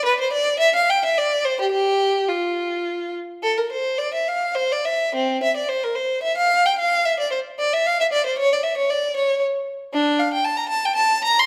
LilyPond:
\new Staff \with { instrumentName = "Violin" } { \time 3/4 \key f \major \tempo 4 = 110 b'16 c''16 d''8 e''16 f''16 g''16 e''16 d''8 c''16 g'16 | g'4 f'4. r8 | a'16 bes'16 c''8 d''16 e''16 f''8 c''16 d''16 e''8 | c'8 e''16 d''16 c''16 bes'16 c''8 e''16 f''8 g''16 |
f''8 e''16 d''16 c''8 d''16 e''16 f''16 e''16 d''16 c''16 | des''16 d''16 e''16 des''16 d''8 des''8 r4 | d'8 f''16 g''16 a''16 bes''16 a''16 g''16 a''8 bes''16 c'''16 | }